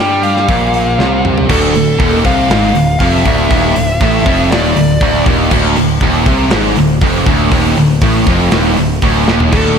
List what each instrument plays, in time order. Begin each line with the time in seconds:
Already playing: picked electric bass G2, lead electric guitar G5
0.00 distorted electric guitar G3
0.23 lead electric guitar F5, open hi-hat
0.37 snare
0.48 picked electric bass A#1, distorted electric guitar A#2, kick, open hi-hat
0.74 open hi-hat
0.99 picked electric bass C2, distorted electric guitar C3, snare
1.25 mid tom
1.38 floor tom
1.49 picked electric bass D1, distorted electric guitar D2, lead electric guitar A4, kick, crash
1.75 picked electric bass D1, distorted electric guitar D2, open hi-hat
1.99 picked electric bass D#1, distorted electric guitar D#2, kick, open hi-hat
2.25 picked electric bass C2, distorted electric guitar C3, lead electric guitar F5, kick, open hi-hat
2.50 picked electric bass G#1, distorted electric guitar G#2, snare, open hi-hat
2.75 picked electric bass D1, distorted electric guitar D2, open hi-hat
2.99 picked electric bass F1, distorted electric guitar F2, lead electric guitar F5, kick, open hi-hat
3.10 lead electric guitar E5
3.26 picked electric bass D1, distorted electric guitar D2, kick, open hi-hat
3.51 picked electric bass D#1, distorted electric guitar D#2, kick, open hi-hat
3.76 picked electric bass D1, distorted electric guitar D2, open hi-hat
4.01 picked electric bass A1, distorted electric guitar A2, kick, open hi-hat
4.25 picked electric bass F1, distorted electric guitar F2, kick, open hi-hat
4.51 picked electric bass D#1, distorted electric guitar D#2, lead electric guitar D5, snare, open hi-hat
4.76 picked electric bass D1, distorted electric guitar D2, open hi-hat
5.01 picked electric bass D1, distorted electric guitar D2, kick, open hi-hat
5.26 picked electric bass D#1, distorted electric guitar D#2, kick
5.51 picked electric bass D1, distorted electric guitar D2, kick, crash
5.76 picked electric bass D1, distorted electric guitar D2, open hi-hat
6.01 picked electric bass D#1, distorted electric guitar D#2, kick, open hi-hat
6.26 picked electric bass C2, distorted electric guitar C3, kick, open hi-hat
6.51 picked electric bass G#1, distorted electric guitar G#2, snare, open hi-hat
6.76 picked electric bass D1, distorted electric guitar D2, open hi-hat
7.01 picked electric bass F1, distorted electric guitar F2, kick, open hi-hat
7.26 picked electric bass D1, distorted electric guitar D2, kick, open hi-hat
7.51 picked electric bass D#1, distorted electric guitar D#2, kick, open hi-hat
7.76 picked electric bass D1, distorted electric guitar D2, open hi-hat
8.01 picked electric bass A1, distorted electric guitar A2, kick, open hi-hat
8.27 picked electric bass F1, distorted electric guitar F2, kick, snare, open hi-hat
8.51 picked electric bass D#1, distorted electric guitar D#2, snare, open hi-hat
8.77 picked electric bass D1, distorted electric guitar D2, open hi-hat
9.02 picked electric bass D1, distorted electric guitar D2, kick, open hi-hat
9.28 picked electric bass D#1, distorted electric guitar D#2, snare
9.40 floor tom
9.52 picked electric bass D1, distorted electric guitar D2, lead electric guitar A4, kick, crash